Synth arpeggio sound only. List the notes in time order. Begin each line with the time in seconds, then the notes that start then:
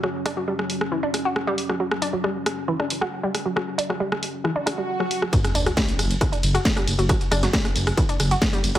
0.03 F#3
0.26 D4
0.37 F#3
0.48 G3
0.92 E3
1.03 D4
1.25 F#4
1.47 G3
1.69 F#3
1.80 F#3
2.02 D4
2.13 F#3
2.24 G3
2.68 E3
2.79 D4
3.01 F#4
3.23 G3
3.46 F#3
3.56 F#3
3.78 D4
3.90 F#3
4.00 G3
4.44 E3
4.56 D4
4.66 D4
4.78 G3
5.00 F#3
5.22 F#3
5.33 F#3
5.55 D4
5.66 F#3
5.77 G3
6.21 E3
6.32 D4
6.55 F#4
6.76 G3
6.99 F#3
7.09 F#3
7.31 D4
7.43 F#3
7.54 G3
7.98 E3
8.09 D4
8.31 F#4
8.53 G3
8.75 F#3